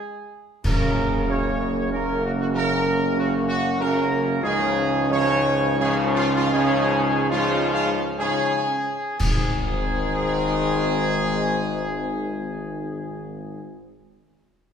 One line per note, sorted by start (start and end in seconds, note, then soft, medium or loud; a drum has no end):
0.00 0.27 G#3 loud
0.00 0.31 G#4 loud
0.64 4.39 F#1 loud
0.64 1.24 F#2 loud
0.64 1.24 C#3 loud
0.64 1.24 A#3 loud
0.64 1.24 C#4 medium
0.64 1.24 A#4 loud
0.64 concert bass drum medium
0.64 crash medium
1.27 1.87 F#2 loud
1.27 1.87 C#3 loud
1.27 1.88 A#3 medium
1.27 1.88 C#4 medium
1.27 1.87 C#5 loud
1.91 2.51 F#2 loud
1.91 2.51 C#3 medium
1.91 2.51 A#3 loud
1.91 2.51 C#4 loud
1.91 2.23 A#4 loud
2.23 2.30 F#4 loud
2.39 2.46 F#4 loud
2.54 3.13 F#2 loud
2.54 3.13 C#3 loud
2.54 3.13 A#3 medium
2.54 3.13 C#4 medium
2.54 3.13 A#4 loud
3.16 3.75 F#2 loud
3.16 3.75 C#3 loud
3.16 3.76 A#3 loud
3.16 3.76 C#4 loud
3.16 3.31 F#4 loud
3.48 3.77 F#4 loud
3.78 4.38 F#2 loud
3.78 4.38 C#3 loud
3.78 4.39 A#3 loud
3.78 4.39 C#4 loud
3.78 4.39 A#4 loud
4.42 8.64 C#2 loud
4.42 5.06 G#2 loud
4.42 5.06 C#3 loud
4.42 5.09 F3 loud
4.42 5.06 C#4 loud
4.42 5.06 G#4 loud
5.10 5.75 G#2 loud
5.10 5.75 C#3 loud
5.10 5.75 F3 loud
5.10 5.75 C#4 loud
5.10 5.75 C#5 loud
5.78 6.49 G#2 loud
5.78 6.48 C#3 loud
5.78 6.49 F3 loud
5.78 6.49 C#4 loud
5.78 5.94 G#4 loud
6.14 6.32 F4 loud
6.34 6.51 F4 loud
6.52 7.27 G#2 loud
6.52 7.27 C#3 loud
6.52 7.27 F3 loud
6.52 7.27 C#4 loud
6.52 7.27 G#4 loud
7.30 8.01 G#2 loud
7.30 8.01 C#3 loud
7.30 8.14 F3 loud
7.30 8.14 C#4 loud
7.30 7.70 F4 loud
7.73 7.89 F4 loud
8.18 8.65 G#2 loud
8.18 8.64 C#3 loud
8.18 8.64 F3 loud
8.18 8.64 C#4 loud
8.18 9.15 G#4 loud
9.18 13.60 G#1 loud
9.18 13.60 G#2 loud
9.18 13.59 D#3 loud
9.18 13.60 G#3 loud
9.18 13.60 C4 loud
9.18 13.60 G#4 loud
9.18 concert bass drum medium
9.18 crash medium